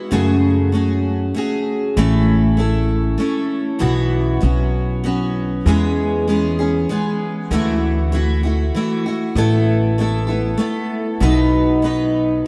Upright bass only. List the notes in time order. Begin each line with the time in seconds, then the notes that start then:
0.12 F#2
1.97 A1
3.81 B1
4.43 B1
5.66 E2
7.51 D2
9.35 A1
11.21 B1